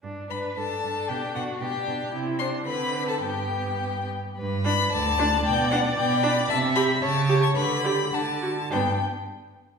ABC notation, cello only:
X:1
M:2/4
L:1/8
Q:1/4=111
K:G
V:1 name="Cello" clef=bass
G,, G,, G,, G,, | B,, B,, B,, B,, | C,2 D,2 | G,,3 z |
G,,2 D,,2 | B,,2 B,,2 | C,2 ^C,2 | D,2 D,2 |
G,, z3 |]